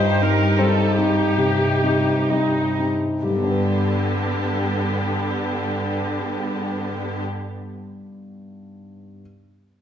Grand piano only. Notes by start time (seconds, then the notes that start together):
Already playing: G2 D#5
0.21 C4 D#4
0.59 G3 C4 D#4 C5
0.96 C4 D#4
1.37 C3
1.82 C4 D#4
2.29 G3 C4 D#4
2.78 C4 D#4
3.23 G2 G4
3.30 G3
3.37 B3
3.44 D4
3.51 B4